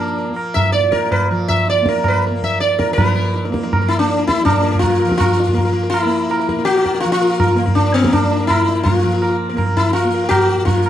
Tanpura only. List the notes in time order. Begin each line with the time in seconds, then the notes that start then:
Already playing: A#2 F3 A#3
0.29 A#3
0.79 A#2
1.30 F3
1.82 A#3
2.31 A#3
2.81 A#2
2.97 F3
3.49 A#3
4.00 A#3
4.51 A#2
5.04 F3
5.53 A#3
6.05 A#3
6.56 A#2
7.04 F3
7.55 A#3
8.02 A#3
8.54 A#2
9.03 F3
9.53 A#3
10.04 A#3
10.55 A#2